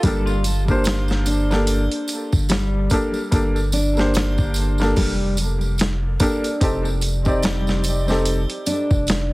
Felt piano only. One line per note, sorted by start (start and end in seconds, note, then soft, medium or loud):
0.04 0.27 A#3 medium
0.04 0.28 D4 medium
0.04 0.28 G4 medium
0.04 0.28 A4 medium
0.68 1.45 A#3 medium
0.68 1.46 D4 medium
0.68 1.46 G4 medium
0.68 1.46 C5 medium
1.51 1.81 A#3 medium
1.51 1.81 D4 medium
1.51 1.82 G4 medium
1.51 1.82 A4 medium
2.91 3.14 A#3 medium
2.91 3.15 D4 medium
2.91 3.15 G4 medium
2.91 3.16 A4 loud
3.31 3.55 A#3 medium
3.31 3.56 D4 medium
3.31 3.56 G4 medium
3.31 3.57 A4 medium
3.97 4.74 A#3 medium
3.97 4.74 D4 medium
3.97 4.75 G4 medium
3.97 4.75 C5 medium
4.80 5.10 A#3 medium
4.80 5.11 D4 medium
4.80 5.11 G4 medium
4.80 5.11 A4 medium
6.20 6.43 A#3 medium
6.20 6.44 D4 medium
6.20 6.44 G4 medium
6.20 6.45 A4 loud
6.61 6.84 C4 medium
6.61 6.85 D#4 medium
6.61 6.85 G4 medium
6.61 6.86 A4 medium
7.26 8.03 C4 medium
7.26 8.03 D#4 medium
7.26 8.03 G4 medium
7.26 8.04 D5 medium
8.08 8.38 C4 medium
8.08 8.39 D#4 medium
8.08 8.39 G4 medium
8.08 8.40 A4 medium